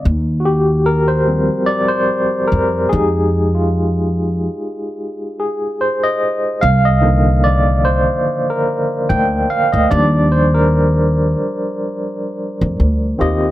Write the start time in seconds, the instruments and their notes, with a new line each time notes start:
0.05 upright bass D#2
0.40 tine electric piano F#4
0.45 tine electric piano G4
0.86 tine electric piano A#4
1.08 tine electric piano C5
1.27 tine electric piano F3 G3 C4
1.66 tine electric piano D5
1.88 tine electric piano C5
2.48 tine electric piano A#4
2.52 upright bass F2
2.89 upright bass F2, tine electric piano G#3 D#4 G4 G#4
3.55 tine electric piano F4
5.40 tine electric piano G#4
5.81 tine electric piano C5
6.04 tine electric piano D#5
6.61 upright bass C2, tine electric piano F5
6.85 tine electric piano D#5
7.01 tine electric piano D3 D#3 F3 A#3
7.44 tine electric piano D5
7.85 tine electric piano C5
8.50 tine electric piano A#4
9.09 upright bass D2, tine electric piano G5
9.50 tine electric piano F5
9.72 upright bass D2, tine electric piano D#5
9.89 upright bass D#2, tine electric piano F3 G3 D4 D5
10.32 tine electric piano C5
10.54 tine electric piano A#4
12.61 upright bass F2
12.80 upright bass D2
13.18 upright bass D#2, tine electric piano D#3 C4 F4 G4 D#5